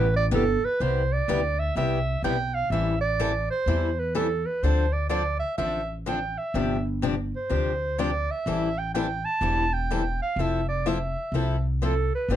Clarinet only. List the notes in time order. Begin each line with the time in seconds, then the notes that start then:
Already playing: B4
0.16 D5
0.35 A4
0.65 B4
0.82 C5
1.13 D5
1.59 E5
1.77 E5
2.24 G5
2.54 F5
2.71 E5
3.01 D5
3.50 C5
3.99 B4
4.16 A4
4.46 B4
4.63 C5
4.93 D5
5.10 D5
5.40 E5
5.58 E5
6.08 G5
6.38 E5
7.36 C5
7.99 D5
8.31 E5
8.78 G5
8.94 G5
9.25 A5
9.73 G5
10.22 F5
10.40 E5
10.68 D5
10.88 E5
11.84 A4
12.15 B4
12.32 C5